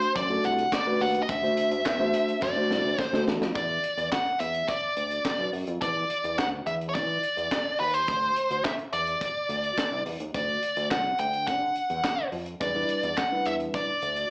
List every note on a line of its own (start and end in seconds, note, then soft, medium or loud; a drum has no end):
0.00 0.12 C5 loud
0.00 closed hi-hat soft
0.15 0.39 F#2 loud
0.15 0.45 D5 loud
0.15 kick loud
0.15 closed hi-hat loud
0.30 0.62 A3 medium
0.30 0.62 D4 medium
0.30 0.62 F#4 medium
0.30 0.62 A4 medium
0.30 closed hi-hat soft
0.44 0.67 C2 loud
0.44 0.71 F#5 loud
0.44 closed hi-hat medium
0.58 closed hi-hat medium
0.72 1.02 D5 medium
0.72 kick loud
0.72 snare loud
0.72 clap medium
0.72 closed hi-hat loud
0.86 1.19 A3 medium
0.86 1.19 D4 medium
0.86 1.19 F#4 medium
0.86 1.19 B4 loud
1.01 1.24 D#2 loud
1.01 1.22 F#5 loud
1.01 open hi-hat medium
1.15 closed hi-hat medium
1.23 1.29 D#5 medium
1.29 1.52 D2 loud
1.29 2.46 E5 loud
1.29 kick loud
1.29 closed hi-hat medium
1.43 1.75 A3 medium
1.43 1.75 D4 medium
1.43 1.76 F#4 medium
1.43 1.76 C5 loud
1.43 closed hi-hat soft
1.57 closed hi-hat loud
1.71 1.83 D2 loud
1.71 closed hi-hat medium
1.86 2.09 E2 medium
1.86 kick loud
1.86 snare loud
1.86 clap loud
1.86 closed hi-hat medium
1.99 2.32 A3 loud
1.99 2.32 D4 medium
1.99 2.32 F#4 medium
1.99 2.32 C5 loud
2.14 closed hi-hat medium
2.28 closed hi-hat medium
2.42 2.54 F#2 loud
2.42 3.01 D5 medium
2.42 kick loud
2.42 snare medium
2.56 2.88 A3 medium
2.56 2.88 D4 medium
2.56 2.89 F#4 medium
2.56 2.89 C5 loud
2.70 2.82 C2 medium
2.70 snare medium
2.84 2.96 D2 medium
2.99 3.23 C5 medium
2.99 kick medium
2.99 snare medium
3.13 3.24 D2 medium
3.13 3.45 A3 medium
3.13 3.45 D4 medium
3.13 3.45 F#4 medium
3.13 3.45 A4 loud
3.13 snare medium
3.27 3.39 E2 loud
3.27 snare loud
3.41 3.53 F2 loud
3.41 snare loud
3.55 3.78 E2 loud
3.55 4.08 D5 medium
3.55 kick loud
3.55 closed hi-hat medium
3.84 closed hi-hat medium
3.97 4.09 E2 medium
3.97 closed hi-hat soft
4.12 4.40 F#5 loud
4.12 kick loud
4.12 snare loud
4.12 clap medium
4.12 closed hi-hat medium
4.26 closed hi-hat soft
4.40 4.63 E2 medium
4.40 4.69 E5 medium
4.40 closed hi-hat medium
4.55 closed hi-hat soft
4.68 5.49 D5 medium
4.68 kick loud
4.68 closed hi-hat medium
4.97 5.20 D2 medium
4.97 closed hi-hat medium
5.11 closed hi-hat medium
5.25 kick loud
5.25 snare loud
5.25 clap medium
5.25 closed hi-hat loud
5.39 5.51 B1 loud
5.53 5.65 F#2 medium
5.53 open hi-hat medium
5.67 5.79 F2 loud
5.67 closed hi-hat medium
5.82 6.05 E2 loud
5.82 6.40 D5 medium
5.82 kick loud
5.82 closed hi-hat loud
6.10 closed hi-hat medium
6.24 6.40 E2 medium
6.24 closed hi-hat medium
6.38 6.62 D2 loud
6.38 6.46 F#5 loud
6.38 kick loud
6.38 snare loud
6.38 clap medium
6.38 closed hi-hat medium
6.66 6.96 E2 medium
6.66 6.72 E5 loud
6.66 closed hi-hat medium
6.81 closed hi-hat soft
6.89 6.94 C#5 medium
6.95 7.18 E3 loud
6.95 7.79 D5 medium
6.95 kick loud
6.95 closed hi-hat medium
7.23 closed hi-hat medium
7.37 7.49 E2 medium
7.37 closed hi-hat medium
7.51 kick medium
7.51 snare loud
7.51 clap medium
7.51 closed hi-hat medium
7.80 8.03 D#2 loud
7.80 7.94 B4 medium
7.80 open hi-hat medium
7.94 8.64 C5 medium
7.94 closed hi-hat medium
8.08 8.31 D2 medium
8.08 kick loud
8.08 closed hi-hat loud
8.23 closed hi-hat soft
8.36 closed hi-hat medium
8.50 8.62 D2 medium
8.50 closed hi-hat medium
8.65 8.72 E5 medium
8.65 kick loud
8.65 snare loud
8.65 clap loud
8.65 closed hi-hat medium
8.79 closed hi-hat soft
8.93 9.16 E2 medium
8.93 10.02 D5 medium
8.93 closed hi-hat medium
9.07 closed hi-hat soft
9.21 kick loud
9.21 closed hi-hat loud
9.49 9.73 D2 medium
9.49 closed hi-hat medium
9.64 closed hi-hat soft
9.78 kick medium
9.78 snare loud
9.78 clap medium
9.78 closed hi-hat loud
9.92 10.04 C2 loud
10.06 10.18 E2 loud
10.06 open hi-hat medium
10.20 10.32 D#2 medium
10.20 closed hi-hat medium
10.34 10.58 D2 loud
10.34 10.88 D5 medium
10.34 kick loud
10.34 closed hi-hat medium
10.63 closed hi-hat medium
10.77 10.93 D2 medium
10.77 closed hi-hat medium
10.91 11.14 C2 medium
10.91 11.17 F#5 medium
10.91 kick loud
10.91 snare loud
10.91 clap medium
10.91 closed hi-hat medium
11.19 11.49 D2 medium
11.19 11.47 G5 loud
11.19 closed hi-hat medium
11.33 closed hi-hat soft
11.47 11.71 D3 loud
11.47 12.28 F#5 medium
11.47 kick loud
11.47 closed hi-hat medium
11.76 closed hi-hat medium
11.90 12.02 E2 medium
11.90 closed hi-hat soft
12.04 kick loud
12.04 snare loud
12.04 clap medium
12.04 closed hi-hat loud
12.32 12.56 F2 loud
12.32 open hi-hat medium
12.46 closed hi-hat medium
12.61 12.84 E2 loud
12.61 12.69 G3 medium
12.61 12.69 D4 medium
12.61 12.69 E4 medium
12.61 12.69 B4 medium
12.61 13.19 D5 medium
12.61 kick loud
12.61 closed hi-hat medium
12.75 13.07 G3 medium
12.75 13.07 D4 medium
12.75 13.07 E4 medium
12.75 13.08 B4 medium
12.89 closed hi-hat medium
13.03 13.15 E2 loud
13.03 closed hi-hat medium
13.17 13.47 F#5 loud
13.17 kick loud
13.17 snare loud
13.17 clap medium
13.17 closed hi-hat medium
13.32 13.88 G3 medium
13.32 13.88 D4 medium
13.32 13.88 E4 medium
13.32 13.89 B4 medium
13.46 13.69 E2 medium
13.46 13.53 E5 medium
13.46 closed hi-hat medium
13.60 closed hi-hat soft
13.74 14.30 D5 medium
13.74 kick loud
13.74 closed hi-hat medium
14.02 14.26 D2 medium
14.02 closed hi-hat medium
14.16 closed hi-hat medium